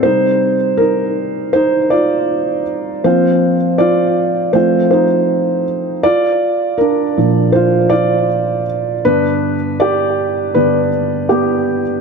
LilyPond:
<<
  \new Staff \with { instrumentName = "Felt piano" } { \time 4/4 \key bes \major \tempo 4 = 80 c''4 <ees' bes'>4 <ees' c''>8 <f' d''>4 r8 | <f' c''>4 <f' d''>4 <f' c''>8 <ees' c''>4 r8 | <f' d''>4 <d' bes'>4 <f' c''>8 <f' d''>4 r8 | <d' b'>4 <g' d''>4 <d' b'>4 <b g'>8. r16 | }
  \new Staff \with { instrumentName = "Felt piano" } { \clef bass \time 4/4 \key bes \major <c g ees'>8 r2. r8 | <f bes c'>8 r4. <f a c'>8 r4. | r4. <bes, f d'>4. r4 | <g, d b>8 r4. <g, d b>8 r4. | }
>>